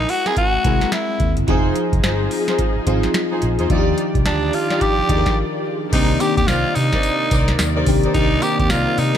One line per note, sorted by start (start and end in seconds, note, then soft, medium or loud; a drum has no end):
0.00 0.64 G#3 medium
0.00 0.65 C4 medium
0.00 0.11 D#4 medium
0.00 0.65 E4 medium
0.00 1.50 A#4 medium
0.09 0.28 F#4 loud
0.09 open hi-hat medium
0.25 0.36 C4 medium
0.25 0.36 E4 medium
0.25 0.36 G#4 medium
0.25 0.37 G#4 medium
0.25 0.36 A#4 medium
0.25 snare medium
0.25 closed hi-hat medium
0.37 0.89 F#4 loud
0.37 kick medium
0.37 closed hi-hat medium
0.54 muted fingered electric bass stroke soft
0.64 0.79 C2 medium
0.64 1.24 G#3 medium
0.64 0.81 C4 medium
0.64 1.24 C4 medium
0.64 0.81 E4 medium
0.64 1.25 E4 medium
0.64 0.81 G#4 medium
0.64 1.25 G#4 medium
0.64 0.81 A#4 loud
0.64 kick medium
0.64 closed hi-hat medium
0.81 snare medium
0.81 closed hi-hat medium
0.92 1.34 E4 medium
0.92 snare loud
0.92 closed hi-hat medium
1.20 1.34 D#2 loud
1.20 kick medium
1.20 closed hi-hat medium
1.37 1.46 F#1 loud
1.37 closed hi-hat medium
1.47 1.71 F1 loud
1.47 3.68 F3 medium
1.47 2.27 F3 medium
1.47 2.28 C4 medium
1.47 3.68 D#4 medium
1.47 1.74 D#4 loud
1.47 2.28 D#4 medium
1.47 1.74 F4 medium
1.47 3.68 G#4 medium
1.47 1.74 G#4 medium
1.47 2.28 G#4 loud
1.47 1.74 C5 loud
1.47 kick loud
1.47 closed hi-hat medium
1.76 closed hi-hat medium
1.93 2.02 F1 medium
1.93 kick medium
1.93 closed hi-hat medium
2.03 2.27 G1 medium
2.03 2.20 D#4 medium
2.03 2.20 F4 medium
2.03 2.20 G#4 medium
2.03 2.20 C5 medium
2.03 snare loud
2.03 closed hi-hat medium
2.31 open hi-hat medium
2.48 2.58 D#4 medium
2.48 2.58 F4 medium
2.48 2.59 G#4 medium
2.48 2.59 C5 medium
2.48 snare medium
2.48 closed hi-hat medium
2.59 kick medium
2.59 closed hi-hat medium
2.76 muted fingered electric bass stroke soft
2.86 3.01 G#1 medium
2.86 3.46 F3 medium
2.86 3.47 C4 medium
2.86 3.03 D#4 medium
2.86 3.47 D#4 medium
2.86 3.03 F4 medium
2.86 3.47 F4 loud
2.86 3.03 G#4 medium
2.86 3.03 C5 loud
2.86 kick loud
2.86 closed hi-hat medium
3.03 snare medium
3.03 closed hi-hat medium
3.14 snare loud
3.14 closed hi-hat medium
3.31 3.42 D#4 medium
3.31 3.42 F4 medium
3.31 3.42 G#4 medium
3.31 3.42 C5 medium
3.42 3.57 A#1 loud
3.42 closed hi-hat medium
3.59 3.68 E2 medium
3.59 3.68 D#4 medium
3.59 3.69 F4 medium
3.59 3.70 G#4 medium
3.59 3.70 C5 medium
3.59 closed hi-hat medium
3.70 3.93 D#2 loud
3.70 5.90 D#3 medium
3.70 4.50 F3 loud
3.70 4.50 D4 medium
3.70 3.96 D#4 loud
3.70 4.50 D#4 medium
3.70 3.96 F4 medium
3.70 5.90 F4 medium
3.70 3.79 F4 medium
3.70 3.96 G4 medium
3.70 5.90 G4 medium
3.70 3.96 D5 loud
3.70 5.90 D5 medium
3.70 kick loud
3.70 closed hi-hat medium
3.78 4.54 G4 loud
3.98 closed hi-hat medium
4.15 4.24 C2 medium
4.15 kick medium
4.15 closed hi-hat medium
4.25 4.49 D2 loud
4.25 4.56 D4 medium
4.25 4.42 D#4 medium
4.25 4.42 F4 medium
4.25 4.42 G4 medium
4.25 4.42 D5 medium
4.25 snare loud
4.25 closed hi-hat medium
4.53 4.83 F4 medium
4.53 open hi-hat medium
4.70 4.81 D#4 medium
4.70 4.81 F4 medium
4.70 4.81 G4 medium
4.70 4.81 D5 medium
4.70 snare medium
4.70 closed hi-hat medium
4.81 5.37 G4 loud
4.81 kick medium
4.81 closed hi-hat medium
4.99 muted fingered electric bass stroke soft
5.09 5.23 D#2 medium
5.09 5.69 F3 medium
5.09 5.69 D4 medium
5.09 5.25 D#4 medium
5.09 5.69 D#4 medium
5.09 5.25 F4 medium
5.09 5.25 G4 medium
5.09 5.18 G#4 medium
5.09 5.26 D5 medium
5.09 kick medium
5.09 closed hi-hat medium
5.17 5.73 A#4 medium
5.26 kick medium
5.26 snare medium
5.26 closed hi-hat medium
5.92 6.16 C2 loud
5.92 9.18 C3 medium
5.92 9.18 D#3 medium
5.92 6.14 D#3 medium
5.92 9.18 A#3 medium
5.92 6.14 A#3 medium
5.92 6.14 C4 medium
5.92 6.14 D4 medium
5.92 6.18 D#4 loud
5.92 6.22 D#4 loud
5.92 6.14 G4 medium
5.92 6.18 A#4 medium
5.92 6.19 C5 medium
5.92 9.18 D5 medium
5.92 6.19 D5 loud
5.92 kick loud
5.92 closed hi-hat medium
5.92 crash loud
5.92 tambourine medium
6.20 7.00 D#3 medium
6.20 7.00 A#3 medium
6.20 7.00 C4 medium
6.20 7.00 D4 medium
6.20 6.36 G4 loud
6.20 7.00 G4 medium
6.20 closed hi-hat medium
6.20 tambourine medium
6.37 6.46 D#2 medium
6.37 6.49 G4 loud
6.37 kick medium
6.37 closed hi-hat medium
6.47 6.62 C2 loud
6.47 6.64 D#4 medium
6.47 6.76 F4 loud
6.47 6.64 A#4 medium
6.47 6.64 C5 medium
6.47 6.65 D5 medium
6.47 snare loud
6.47 closed hi-hat medium
6.47 tambourine medium
6.75 6.90 C3 loud
6.75 7.59 D#4 medium
6.75 open hi-hat medium
6.75 tambourine medium
6.92 7.03 D#4 medium
6.92 7.03 A#4 medium
6.92 7.03 C5 medium
6.92 7.03 D5 medium
6.92 kick medium
6.92 snare medium
6.92 closed hi-hat medium
7.03 closed hi-hat medium
7.03 tambourine medium
7.31 7.54 C2 medium
7.31 7.48 D#4 medium
7.31 7.48 A#4 medium
7.31 7.48 C5 medium
7.31 7.48 D5 medium
7.31 kick loud
7.31 closed hi-hat loud
7.31 tambourine medium
7.48 snare medium
7.48 closed hi-hat medium
7.59 7.82 D#2 medium
7.59 snare loud
7.59 closed hi-hat medium
7.59 tambourine medium
7.76 7.86 D#4 medium
7.76 7.86 A#4 medium
7.76 7.87 C5 medium
7.76 7.87 D5 medium
7.86 8.01 C2 loud
7.86 8.08 D#3 loud
7.86 8.09 A#3 medium
7.86 8.09 C4 medium
7.86 8.09 D4 medium
7.86 8.09 G4 loud
7.86 kick loud
7.86 open hi-hat medium
8.03 8.13 D#4 medium
8.03 8.14 A#4 medium
8.03 8.14 C5 medium
8.03 8.14 D5 medium
8.03 closed hi-hat medium
8.14 8.38 C2 loud
8.14 8.36 D#3 medium
8.14 8.36 A#3 medium
8.14 8.36 C4 medium
8.14 8.37 D4 medium
8.14 8.44 D#4 loud
8.14 8.41 D#4 medium
8.14 8.37 G4 medium
8.14 8.41 A#4 medium
8.14 8.41 C5 medium
8.14 8.41 D5 loud
8.14 kick loud
8.14 closed hi-hat medium
8.14 tambourine medium
8.42 9.18 D#3 medium
8.42 9.18 A#3 medium
8.42 9.18 C4 medium
8.42 9.18 D4 medium
8.42 8.59 G4 loud
8.42 9.18 G4 medium
8.42 closed hi-hat medium
8.42 tambourine medium
8.59 8.68 D#2 medium
8.59 8.72 G4 loud
8.59 kick loud
8.59 closed hi-hat medium
8.70 8.84 C2 medium
8.70 8.87 D#4 medium
8.70 9.00 F4 loud
8.70 8.87 A#4 medium
8.70 8.87 C5 medium
8.70 8.87 D5 medium
8.70 snare loud
8.70 closed hi-hat medium
8.70 tambourine loud
8.98 9.12 C3 loud
8.98 9.18 D#4 loud
8.98 open hi-hat medium
8.98 tambourine medium
9.15 9.18 D#4 medium